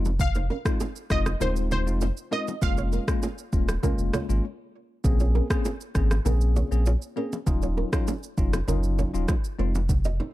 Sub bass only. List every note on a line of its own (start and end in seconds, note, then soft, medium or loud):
0.00 0.50 F1 loud
1.10 1.35 F1 medium
1.41 1.88 D#1 loud
1.87 2.11 F1 medium
2.62 2.99 F1 loud
3.53 3.77 D#1 medium
3.99 4.11 F1 medium
4.29 4.41 G#1 medium
5.04 5.41 A#1 loud
5.95 6.19 G#1 medium
6.26 6.62 A#1 loud
6.72 6.96 A#1 medium
7.47 7.84 D#1 loud
8.38 8.62 F1 medium
8.68 9.05 F#1 loud
9.14 9.26 D#1 medium
9.59 10.20 F1 loud